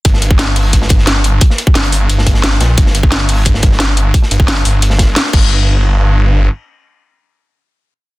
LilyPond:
<<
  \new Staff \with { instrumentName = "Detuned saw bass" } { \clef bass \time 4/4 \key g \minor \tempo 4 = 176 g,,2~ g,,8 g,,4. | r4 g,,2~ g,,8 bes,,8 | g,,2~ g,,8 g,,4. | r8 g,,4 g,,4. r8 g,,8~ |
g,,2. r4 | r1 | }
  \new DrumStaff \with { instrumentName = "Drums" } \drummode { \time 4/4 <hh bd>16 sn16 hh16 bd16 <hh sn>8 <hh hho>8 <hh bd>16 sn16 <hh bd>16 sn16 <hh sn>8 hh8 | <hh bd>16 sn16 hh16 bd16 <hh sn>16 hh16 <hh hho>8 hh16 sn16 <hh bd>16 sn16 <hh sn>16 sn16 <hh sn>8 | <hh bd>16 sn16 hh16 bd16 <hh sn>8 <hh hho>8 <hh bd>16 sn16 <hh bd>16 sn16 <hh sn>8 hh8 | <hh bd>16 sn16 hh16 bd16 <hh sn>16 hh16 <hh hho>8 hh16 sn16 <hh bd sn>8 <hh sn>16 sn16 <cymc bd>8 |
r4 r4 r4 r4 | r4 r4 r4 r4 | }
>>